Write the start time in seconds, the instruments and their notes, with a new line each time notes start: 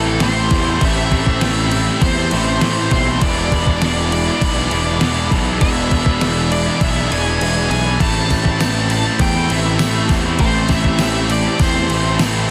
Already playing: picked electric bass A1, distorted electric guitar A2 A3, overdriven electric guitar A2 E3 A3 C4 E4, ambient pad C4 G4 E5 A5, lead electric guitar A4
0.05 overdriven electric guitar A3 C4 E4
0.20 picked electric bass A1, overdriven electric guitar A2 E3 A3 C4 E4, lead electric guitar C5, snare, crash
0.36 overdriven electric guitar A3 C4 E4
0.51 picked electric bass E2, overdriven electric guitar E3 A3 C4, kick, crash
0.55 overdriven electric guitar E4
0.65 overdriven electric guitar A3 C4 E4
0.80 picked electric bass A1, overdriven electric guitar A2 E3 A3 C4 E4, ambient pad B5, kick, crash
0.85 lead electric guitar E5
1.10 overdriven electric guitar E3 A3 C4 E4, kick, crash
1.24 overdriven electric guitar A3 C4 E4, kick
1.39 overdriven electric guitar A2 E3 A3 C4 E4, snare, crash
1.70 overdriven electric guitar E3 A3 C4 E4, muted overdriven electric guitar stroke, crash
1.85 overdriven electric guitar A3 C4 E4
2.01 picked electric bass E2, lead electric guitar C5, kick, crash
2.14 overdriven electric guitar A3 C4 E4, snare
2.30 picked electric bass A1, overdriven electric guitar E3 A3 C4 E4, crash
2.35 distorted electric guitar A2
2.44 overdriven electric guitar A3 C4 E4
2.59 picked electric bass A1, overdriven electric guitar A2 E3 A3 C4 E4, snare, crash
2.64 distorted electric guitar A3
2.75 overdriven electric guitar A3 C4 E4
2.91 picked electric bass B1, overdriven electric guitar E3 A3 C4 E4, lead electric guitar C5, kick, crash
3.05 overdriven electric guitar A3 C4 E4
3.20 picked electric bass E1, overdriven electric guitar E2 B2 E3 G#3 B3 D4 E4, ambient pad G#4 D5 E5, lead electric guitar D5, kick, crash
3.26 overdriven electric guitar G#4
3.51 overdriven electric guitar E3 G#3 B3 D4 E4, kick, crash
3.55 overdriven electric guitar G#4
3.66 overdriven electric guitar E3 G#3 B3 D4 E4 G#4, kick
3.81 overdriven electric guitar E2 B2 E3 G#3 B3 D4 E4 G#4, snare, crash
4.12 overdriven electric guitar E3 G#3 D4 E4, lead electric guitar D5, muted overdriven electric guitar stroke, crash
4.27 overdriven electric guitar E3 G#3 B3 D4 E4 G#4
4.41 picked electric bass B1, kick, crash
4.56 overdriven electric guitar E3 G#3 B3 D4 E4 G#4
4.71 picked electric bass E1, distorted electric guitar E2 B2, overdriven electric guitar E3 G#3 B3 D4 E4 G#4, crash
4.86 overdriven electric guitar E3 G#3 D4 E4
5.00 picked electric bass E1, overdriven electric guitar E2 B2 E3 G#3 B3 D4 E4 G#4, snare, crash
5.15 overdriven electric guitar E3 G#3 B3 D4 E4 G#4
5.31 picked electric bass B1, overdriven electric guitar E3 B3 D4 G#4, kick, crash
5.45 overdriven electric guitar E3 G#3 D4 E4 G#4
5.51 overdriven electric guitar B3
5.60 picked electric bass E1, overdriven electric guitar E2 B2 E3 G#3 D4 E4, lead electric guitar E5, kick, crash
5.64 overdriven electric guitar B3 G#4
5.91 overdriven electric guitar E3 G#3 B3 D4 E4 G#4, kick, crash
6.06 overdriven electric guitar E3 G#3 D4 E4 G#4, kick
6.11 overdriven electric guitar B3
6.21 overdriven electric guitar E2 B2 E3 G#3 B3 D4 E4, snare, crash
6.26 overdriven electric guitar G#4
6.51 overdriven electric guitar E3 G#3 D4 E4, lead electric guitar D5, muted overdriven electric guitar stroke, crash
6.66 overdriven electric guitar E3 G#3 B3 D4 E4 G#4
6.81 picked electric bass B1, lead electric guitar E5, kick, crash
6.96 overdriven electric guitar E3 G#3 B3 D4 E4 G#4, snare
7.10 picked electric bass E1, distorted electric guitar E2 B2, overdriven electric guitar E3 G#3 B3 D4 E4 G#4, lead electric guitar G#5, crash
7.26 overdriven electric guitar E3 G#3 D4 E4
7.40 picked electric bass E1, overdriven electric guitar E2 B2 E3 G#3 B3 D4 E4 G#4, crash
7.55 overdriven electric guitar E3 G#3 B3 D4 E4 G#4
7.70 picked electric bass B1, overdriven electric guitar E3 B3 D4 G#4, lead electric guitar G#5, crash
7.85 overdriven electric guitar E3 G#3 D4 E4 G#4
7.89 overdriven electric guitar B3
7.99 picked electric bass A1, overdriven electric guitar A2 E3 A3 C4 E4, ambient pad C4 G4 A5, lead electric guitar A5, kick, crash
8.30 overdriven electric guitar E3 A3 C4 E4, kick, tambourine, crash
8.45 overdriven electric guitar A3 C4 E4, kick
8.60 overdriven electric guitar A2 E3 A3 C4 E4, snare, tambourine, crash
8.90 overdriven electric guitar E3 A3 C4 E4, lead electric guitar A5, muted overdriven electric guitar stroke, tambourine, crash
9.04 overdriven electric guitar A3 C4 E4
9.19 picked electric bass E2, lead electric guitar G5, kick, tambourine, crash
9.35 overdriven electric guitar A3 C4 E4, snare
9.50 picked electric bass A1, distorted electric guitar A2, overdriven electric guitar E3 A3 C4 E4, lead electric guitar E5, crash
9.65 overdriven electric guitar A3 C4 E4
9.79 picked electric bass A1, overdriven electric guitar A2 E3 A3 C4 E4, snare, tambourine, crash
9.93 overdriven electric guitar A3 C4 E4
10.09 picked electric bass E2, overdriven electric guitar E3 A3 C4 E4, kick, tambourine, crash
10.25 overdriven electric guitar A3 C4 E4
10.39 picked electric bass A1, overdriven electric guitar A2 E3 A3 C4 E4, lead electric guitar C5, kick, crash
10.69 overdriven electric guitar E3 A3 C4 E4, lead electric guitar E5, kick, tambourine, crash
10.84 overdriven electric guitar A3 C4 E4, kick
10.99 overdriven electric guitar A2 E3 A3 C4 E4, lead electric guitar E5, snare, tambourine, crash
11.29 overdriven electric guitar E3 A3 C4 E4, lead electric guitar D5, muted overdriven electric guitar stroke, tambourine, crash
11.45 overdriven electric guitar A3 C4 E4
11.59 picked electric bass E2, lead electric guitar C5, kick, tambourine, crash
11.75 overdriven electric guitar A3 C4 E4, snare
11.90 picked electric bass A1, distorted electric guitar A2, overdriven electric guitar E3 A3 C4 E4, crash
12.04 overdriven electric guitar A3 C4 E4
12.18 picked electric bass A1, overdriven electric guitar A2 E3 A3 C4 E4, snare, tambourine, crash
12.34 overdriven electric guitar A3 C4 E4